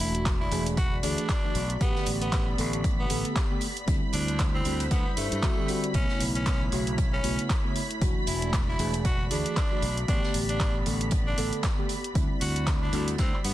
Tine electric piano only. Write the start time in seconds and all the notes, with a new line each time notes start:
Already playing: E3 A3 D4 F#4
0.51 E3 A3 D4 G#4
1.03 E3 A3 D4 G#4
1.43 E3 A3 D4 F#4
1.80 D3 A3 B3 G4
2.58 D3 A3 B3 A4
3.10 D3 A3 B3 A4
3.50 D3 A3 B3 G4
3.87 D3 G3 C4 E4
4.65 D3 G3 C4 F#4
5.42 D3 G3 C4 F#4
5.57 D3 G3 C4 G4
5.68 D3 G3 C4 F#4
5.83 D3 G3 C4 F#4
5.93 C#3
6.72 C#3 A3 B3 F#4
7.23 C#3 A3 B3 F#4
7.64 C#3 A3 B3 E4
8.00 E3 A3 D4 F#4
8.79 E3 A3 D4 G#4
9.30 E3 A3 D4 G#4
9.71 E3 A3 D4 F#4
10.07 D3 A3 B3 G4
10.85 D3 A3 B3 A4
11.37 D3 A3 B3 A4
11.78 D3 A3 B3 G4
12.14 D3 G3 C4 E4
12.92 D3 G3 C4 F#4